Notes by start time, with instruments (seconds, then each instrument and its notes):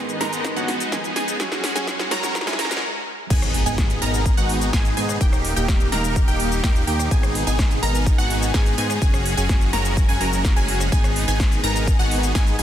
Already playing: grand piano G#2 D#3 G#3 B3 D#4, string section G#3 B3 D#4 G#4 D#5, supersaw synth B3 D#4 G#4, synth pluck G#5, riser
0.09 closed hi-hat, shaker
0.20 grand piano G#2 D#3 G#3 B3 D#4, supersaw synth B3 D#4 A#4, synth pluck A#5, snare, open hi-hat
0.33 closed hi-hat, shaker
0.45 kick, snare, closed hi-hat, shaker
0.56 grand piano G#2 D#3 G#3 B3 C#4, supersaw synth B3 D#4 F#4, synth pluck F#5, closed hi-hat, shaker
0.68 snare, open hi-hat
0.80 closed hi-hat, shaker
0.92 grand piano G#2 D#3 G#3 B3 D#4, supersaw synth B3 D#4 G#4, synth pluck G#5, kick, snare, closed hi-hat, shaker
1.04 closed hi-hat, shaker
1.16 supersaw synth B3 D#4 G#4, synth pluck G#5, snare, open hi-hat
1.28 closed hi-hat, shaker
1.39 grand piano F#3 G#3 C#4 F#4, supersaw synth C#4 F#4 G#4, string section C#4 F#4 C#5 F#5, synth pluck G#5, kick, snare, closed hi-hat, shaker
1.52 snare, closed hi-hat, shaker
1.64 snare, open hi-hat
1.75 grand piano F#3 G#3 C#4 F#4, supersaw synth C#4 F#4 G#4, synth pluck G#5, snare, closed hi-hat, shaker
1.87 kick, snare, closed hi-hat, shaker
1.99 snare, closed hi-hat, shaker
2.10 grand piano F#3 G#3 C#4 F#4, supersaw synth C#4 F#4 A#4, synth pluck A#5, snare, open hi-hat
2.23 snare, closed hi-hat, shaker
2.35 kick, snare, closed hi-hat, shaker
2.41 snare
2.46 grand piano F#3 G#3 C#4 E4, supersaw synth C#4 F#4 G#4, synth pluck G#5, snare, closed hi-hat, shaker
2.53 snare
2.59 supersaw synth C#4 F#4 A#4, synth pluck A#5, snare, open hi-hat
2.65 snare
2.70 grand piano F#3 G#3 C#4 A#4, snare, closed hi-hat, shaker
2.77 snare
3.30 analog synth bass G#1, string section B2 D#3 G#3 D#4 G#4, supersaw synth B3 D#4 G#4, synth pluck G#5, kick, closed hi-hat, crash, impact, shaker
3.42 cross-stick, closed hi-hat, shaker
3.54 open hi-hat
3.66 analog synth bass G#1, supersaw synth B3 D#4 G#4, synth pluck G#5, closed hi-hat, shaker
3.78 kick, cross-stick, snare, closed hi-hat, shaker
3.90 closed hi-hat, shaker
4.02 analog synth bass G#1, supersaw synth B3 D#4 A#4, synth pluck A#5, open hi-hat
4.14 closed hi-hat, shaker
4.26 kick, closed hi-hat, shaker
4.37 analog synth bass G#1, supersaw synth B3 D#4 F#4, synth pluck F#5, closed hi-hat, shaker
4.49 open hi-hat
4.61 closed hi-hat, shaker
4.73 supersaw synth B3 D#4 G#4, synth pluck G#5, kick, snare, closed hi-hat, shaker
4.85 closed hi-hat, shaker
4.97 analog synth bass G#2, supersaw synth B3 D#4 G#4, synth pluck G#5, open hi-hat
5.09 cross-stick, closed hi-hat, shaker
5.21 analog synth bass D#1, string section A#2 G3 D#4 G4, supersaw synth A#3 D#4 G4, synth pluck G5, kick, closed hi-hat, shaker
5.33 cross-stick, closed hi-hat, shaker
5.45 open hi-hat
5.56 analog synth bass D#1, supersaw synth A#3 D#4 G4, synth pluck G5, closed hi-hat, shaker
5.68 kick, cross-stick, snare, closed hi-hat, shaker
5.80 closed hi-hat, shaker
5.92 analog synth bass D#1, supersaw synth A#3 D#4 A#4, synth pluck A#5, snare, open hi-hat
6.04 closed hi-hat, shaker
6.16 kick, closed hi-hat, shaker
6.28 analog synth bass D#1, supersaw synth A#3 D#4 G4, synth pluck G5, closed hi-hat, shaker
6.40 open hi-hat
6.52 closed hi-hat, shaker
6.64 supersaw synth A#3 D#4 G4, synth pluck G5, kick, snare, closed hi-hat, shaker
6.76 closed hi-hat, shaker
6.87 analog synth bass D#2, supersaw synth A#3 D#4 G4, synth pluck G5, open hi-hat
6.99 cross-stick, closed hi-hat, shaker
7.11 analog synth bass G#1, string section B2 G#3 G#4, supersaw synth B3 D#4 G#4, synth pluck G#5, kick, closed hi-hat, shaker
7.23 cross-stick, closed hi-hat, shaker
7.35 open hi-hat
7.47 analog synth bass G#1, supersaw synth B3 D#4 G#4, synth pluck G#5, closed hi-hat, shaker
7.59 kick, cross-stick, snare, closed hi-hat, shaker
7.71 closed hi-hat, shaker
7.83 analog synth bass G#1, supersaw synth B3 D#4 A#4, synth pluck A#5, open hi-hat
7.95 closed hi-hat, shaker
8.06 kick, closed hi-hat, shaker
8.18 analog synth bass G#1, supersaw synth B3 D#4 F#4, synth pluck F#5, closed hi-hat, shaker
8.30 open hi-hat
8.42 closed hi-hat, shaker
8.54 analog synth bass G#2, supersaw synth B3 D#4 G#4, synth pluck G#5, kick, snare, closed hi-hat, shaker
8.66 closed hi-hat, shaker
8.78 analog synth bass G#2, supersaw synth B3 D#4 G#4, synth pluck G#5, open hi-hat
8.90 cross-stick, closed hi-hat, shaker
9.02 analog synth bass F#1, string section C#3 F#3 F#4, supersaw synth C#4 F#4 G#4, synth pluck G#5, kick, closed hi-hat, shaker
9.14 cross-stick, closed hi-hat, shaker
9.26 open hi-hat
9.37 analog synth bass F#1, supersaw synth C#4 F#4 G#4, synth pluck G#5, closed hi-hat, shaker
9.49 kick, cross-stick, snare, closed hi-hat, shaker
9.61 closed hi-hat, shaker
9.73 analog synth bass F#1, supersaw synth C#4 F#4 A#4, synth pluck A#5, snare, open hi-hat
9.85 closed hi-hat, shaker
9.97 kick, closed hi-hat, shaker
10.09 analog synth bass F#1, supersaw synth C#4 F#4 G#4, synth pluck G#5, closed hi-hat, shaker
10.21 analog synth bass F#1, supersaw synth C#4 F#4 A#4, synth pluck A#5, open hi-hat
10.33 closed hi-hat, shaker
10.45 kick, snare, closed hi-hat, shaker
10.56 analog synth bass F#1, supersaw synth C#4 F#4 G#4, synth pluck G#5, closed hi-hat, shaker
10.68 open hi-hat
10.80 cross-stick, closed hi-hat, shaker
10.92 analog synth bass G#1, string section B2 D#3 D#4 G#4, supersaw synth B3 D#4 G#4, synth pluck G#5, kick, closed hi-hat, ride, shaker
11.04 cross-stick, closed hi-hat, shaker
11.16 open hi-hat
11.28 analog synth bass G#1, supersaw synth B3 D#4 G#4, synth pluck G#5, closed hi-hat, shaker
11.40 kick, cross-stick, snare, closed hi-hat, ride, shaker
11.52 closed hi-hat, shaker
11.63 analog synth bass G#1, supersaw synth B3 D#4 A#4, synth pluck A#5, open hi-hat
11.76 closed hi-hat, shaker
11.87 kick, closed hi-hat, ride, shaker
11.99 analog synth bass G#1, supersaw synth B3 D#4 F#4, synth pluck F#5, closed hi-hat, shaker
12.11 open hi-hat
12.23 closed hi-hat, shaker
12.35 analog synth bass G#2, supersaw synth B3 D#4 G#4, synth pluck G#5, kick, snare, closed hi-hat, ride, shaker
12.47 closed hi-hat, shaker
12.59 analog synth bass G#1, supersaw synth B3 D#4 G#4, synth pluck G#5, open hi-hat